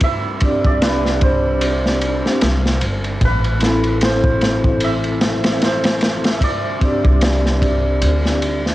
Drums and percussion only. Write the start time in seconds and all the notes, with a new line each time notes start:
0.00 kick, ride
0.40 kick, ride
0.64 kick
0.82 snare, ride
1.06 snare
1.21 kick, ride
1.61 ride
1.86 snare
2.02 ride
2.26 snare
2.41 snare, ride
2.66 snare
2.81 ride
3.04 ride
3.21 kick, ride
3.44 ride
3.60 snare, ride
3.84 ride
4.01 snare, ride
4.24 kick
4.41 snare, ride
4.64 kick
4.80 ride
5.04 ride
5.21 snare, ride
5.44 snare, ride
5.62 snare, ride
5.84 snare, ride
6.01 snare, ride
6.24 snare, ride
6.41 kick, ride
6.81 kick, ride
7.05 kick
7.21 snare, ride
7.46 snare
7.62 kick, ride
8.02 ride
8.25 snare
8.42 ride
8.66 snare